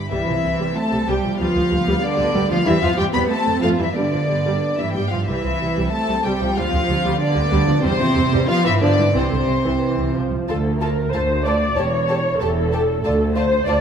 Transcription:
Already playing: G2 B5
0.11 C2 E3 G3 C4 E4 E5
0.27 C2 F3
0.44 C2 G3
0.60 C2 G3
0.75 A3 A4 A5
0.92 C2 G3
1.08 C2 G3 G4 G5
1.24 C2 F3
1.39 D2 F3 G3 B3 F4 F5
1.55 D2 F3
1.71 D2 G3
1.87 D2 G3
2.02 D3 D4 D5
2.18 D2 G3
2.34 D2 G3
2.50 D2 F3 F4 F5
2.66 E2 E3 G3 C4 E4 E5
2.82 E2 F3 F4 F5
2.97 E2 G3 G4 G5
3.13 E2 G3 B3 B4 B5
3.30 A3 A4 A5
3.46 F2 A3
3.62 F2 F3 A3 F4 F5
3.79 F2 E3 G3 E4 E5
3.94 G2 D3 G3 B3 D4 D5
4.12 G2 F3
4.29 G2 G3
4.45 G2 G3
4.78 G2 E3 G3 E4 E5
4.93 G2 G3 G4 G5
5.10 G2 F3 F4 F5
5.26 C2 E3 G3 C4 E4 E5
5.44 C2 F3
5.61 C2 G3
5.77 C2 G3
5.91 A3 A4 A5
6.09 C2 G3
6.24 C2 G3 G4 G5
6.41 C2 F3
6.56 D2 F3 G3 F4 F5
6.73 D2 F3
6.89 D2 G3
7.04 D2 G3
7.20 D3 B3 D4 D5
7.36 D2 G3
7.51 D2 G3
7.68 D2 F3
7.83 E2 C3 G3 C4 C5
8.00 E2 F3
8.16 E2 G3
8.32 E2 G3
8.48 F3 B3 F4 F5
8.64 G2 E3 F3 E4 E5
8.81 G2 D3 F3 D4 D5
8.97 G2 E3
9.14 C2 C3 E3 C4 C5
9.31 C2 D3
9.47 C2 E3
9.64 C2 E3
9.81 E3
9.98 C2
10.14 C2 F3
10.31 C2
10.47 D2 F4 A4 A5
10.79 F4 A4 A#4 A5
11.12 D2 F4 A4 C5 A5
11.45 F4 A4 D5 A5
11.76 E1 E2 G4 A4 C#5 A5
12.07 G4 A4 A5
12.39 E1 E2 G4 A4 A5
12.72 G4 A4 A5
13.03 D2 F4 A4 D5 A5
13.35 F4 C5 D5 A5
13.67 D2 F4 D5 A5

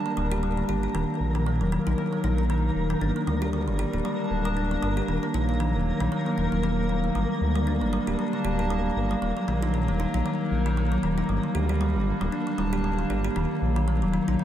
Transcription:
Already playing: G3 A#3 D4 A#4 A5
0.06 A#3
0.17 D1 G3
0.32 G4
0.43 G3
0.57 D3
0.69 G1 G4
0.83 G4
0.95 D#1 D#3 F#3
1.20 A#1
1.35 D#3
1.46 A#3 A#4
1.61 D#1 F#3
1.72 D#3
1.86 A#1 D#4
1.98 D#3
2.13 A#3
2.24 A#1 D#4
2.38 D#4
2.50 D#3
2.76 D#1
2.90 D#3
3.01 G1 G3 D4
3.16 A#3
3.27 D2 G3
3.42 G4
3.53 G3
3.68 G1 D3
3.79 D4 G4
3.93 D1 G4 A5
4.05 G3
4.31 D1
4.45 G3
4.57 D4
4.71 A#3
4.83 G1 G3
4.97 G4
5.08 D#1 D#3 F#3
5.23 A#3
5.28 D#4
5.34 A#1 D#4
5.49 D#4
5.60 D#3
5.75 D#1
6.00 A#1 D#3 A#4
6.12 A#3
6.26 F#3
6.38 D#1 D#4
6.52 D#1 F#3
6.63 D#3
6.89 D#3
7.04 A3
7.15 G1 G3
7.41 D2
7.56 G3
7.67 D4
7.74 D4
7.81 G1 A#3
7.93 G3
8.07 D1 G4 A5
8.19 G3
8.33 D3
8.45 D1 G4
8.59 G4
8.70 G3
8.96 G1
9.11 G3
9.22 D#1 F#3 A#3
9.37 F#3
9.48 A#1 D#3
9.62 D#4
9.74 D#3
9.88 D#1 A#3
10.00 D#4
10.14 A#1 D#4 A#4
10.26 D#3
10.51 A#1
10.66 D#3
10.77 A#3
10.92 F#3
11.03 D#1 D#3
11.18 D#4
11.29 G1 G3
11.43 D3
11.55 D2 G4
11.65 D4 G4
11.81 G3
11.95 G1
12.21 D1 G3 A5
12.32 D4
12.47 A#3
12.58 D1 G3
12.73 G4
12.84 G3
12.99 D3
13.10 G1 G4
13.24 G4
13.36 D#1 D#3 F#3
13.62 A#1
13.76 D#3 D#4
13.88 A#3
14.02 D#1 F#3
14.14 D#3
14.28 A#1 D#4 A#4
14.39 D#3

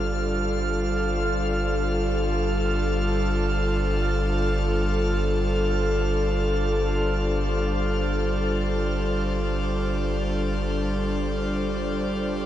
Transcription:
Already playing: G1 G3 D4 F4 A4 C5 D5 F6
12.19 G4

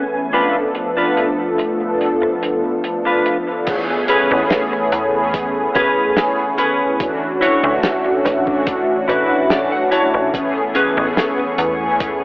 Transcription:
Already playing: E3 A3 B3 C#4 B4 G#5
0.33 F3 A3 B3 D4 F4 A4 B4, closed hi-hat
0.75 muted clean electric guitar stroke, closed hi-hat
0.97 F3 A3 B3 D4 F4 A4 B4
1.17 closed hi-hat
1.58 muted clean electric guitar stroke, closed hi-hat
1.79 F3 A3 B3 D4 A4, muted clean electric guitar stroke
2.01 closed hi-hat
2.22 muted clean electric guitar stroke
2.42 muted clean electric guitar stroke, closed hi-hat
2.84 closed hi-hat
3.05 D4 F4 B4
3.26 closed hi-hat
3.67 E3 A3 B3 C#4 G#4 C#5 G#5 B5, kick, closed hi-hat, crash
4.08 C#4 G#4 B4, closed hi-hat
4.30 A1 E3 A3 B3 C#4 G#4
4.50 snare, closed hi-hat
4.72 muted clean electric guitar stroke
4.92 E2, muted clean electric guitar stroke, closed hi-hat
5.13 E3 A3 B3 C#4 G#4
5.33 muted clean electric guitar stroke, kick, closed hi-hat
5.75 E1 C#4 G#4 B4, kick, closed hi-hat
6.16 E3 A3 B3 C#4 G#4, snare, closed hi-hat
6.58 C#4 G#4 B4, closed hi-hat
6.81 D2
6.99 E3 A3 C#4 D4 F#4 E5 F#5, kick, closed hi-hat
7.41 E4 F#4 C#5, closed hi-hat
7.63 D2 E3 A3 C#4 D4 F#4
7.83 snare, closed hi-hat
8.05 muted clean electric guitar stroke
8.25 A1, muted clean electric guitar stroke, snare, closed hi-hat
8.46 E3 A3 C#4 D4 F#4, kick
8.66 muted clean electric guitar stroke, kick, closed hi-hat
9.08 A1 E4 F#4 B4, closed hi-hat
9.49 E3 A3 D4 F#4 D5, snare, closed hi-hat
9.72 F#5
9.91 E4 F#4 C#5 A5, closed hi-hat
10.14 A1
10.33 E3 A3 B3 C#4 G#4 B4 G#5 C#6, kick, closed hi-hat
10.75 C#4 G#4 B4, closed hi-hat
10.97 A1 E3 A3 B3 C#4 G#4
11.17 snare, closed hi-hat
11.38 muted clean electric guitar stroke
11.58 E2, muted clean electric guitar stroke, closed hi-hat
11.79 E3 A3 B3 C#4 G#4
12.00 muted clean electric guitar stroke, kick, closed hi-hat

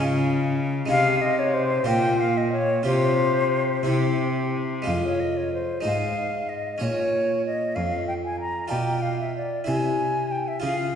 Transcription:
Already playing: C#3 G#3 C#4 F4
0.86 G#3 D#4 G#4 F5
0.90 C3
1.22 D#5
1.39 C#5
1.54 C5
1.84 A#2 F4 A#4 G5
2.20 F5
2.37 D#5
2.52 C#5
2.83 C3 F4 G4 C5
3.83 C3 E4 G4
4.82 G#3 F4
4.87 F2 F5
5.04 C#5
5.20 D#5
5.37 C#5
5.53 C5
5.81 G#3 D#4 C5
5.85 G#2 F5
6.49 D#5
6.78 A#2 C#4 C#5
6.82 C#5
7.46 D#5
7.75 F2 F5
8.08 G5
8.25 G#5
8.40 A#5
8.68 B2 F4 D5 G5
9.02 F5
9.20 E5
9.36 D5
9.64 C3 E4 C5 G#5
10.31 G5
10.48 E5
10.60 C#3 F4 G#4 F5

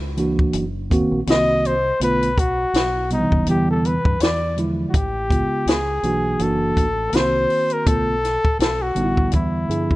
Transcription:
Already playing: C#2
0.17 E3 A#3 D4 F#4, closed hi-hat
0.39 kick
0.53 F#1, closed hi-hat
0.90 D#3 A#3 C4 F#4, kick, closed hi-hat
1.12 A#1
1.27 C2 D#3 A#3 C4 F#4 D#5, snare, closed hi-hat
1.65 C5, closed hi-hat
2.00 B1 D3 A3 B3 F4 B4, closed hi-hat
2.22 closed hi-hat
2.38 F#4, kick, closed hi-hat
2.74 B1, snare, closed hi-hat
3.10 C3 G3 B3 D#4, closed hi-hat
3.19 E3
3.32 F#1, kick
3.46 E2 D3 G3 B3 E4 G4, closed hi-hat
3.70 A4
3.85 B4, closed hi-hat
4.05 G2, kick
4.20 E2 D5, snare, closed hi-hat
4.56 D3 F3 G#3 E4, closed hi-hat
4.89 F#4
4.94 A1 G4, kick, closed hi-hat
5.29 C#3 G#3 B3 F4, kick, closed hi-hat
5.66 C#2 G#4, snare, closed hi-hat
6.03 B1 E3 A#3 D4 F#4, closed hi-hat
6.39 F#1 E3 A#3 D4 F#4 A4, closed hi-hat
6.77 A1, kick, closed hi-hat
7.12 C2 D#3 A#3 C4 F#4 C5, snare, closed hi-hat
7.50 open hi-hat
7.70 A#4, closed hi-hat
7.85 B1 D3 A3 B3 F4 A4, kick, closed hi-hat
8.24 snare, closed hi-hat
8.45 kick
8.59 B1 A4, snare, closed hi-hat
8.82 F#4
8.95 A1 D3 G3 B3 D#4, closed hi-hat
9.04 E4
9.17 kick
9.31 E2 E4, kick, closed hi-hat
9.68 G2 D3 F3 E4 G#4, closed hi-hat
9.91 kick

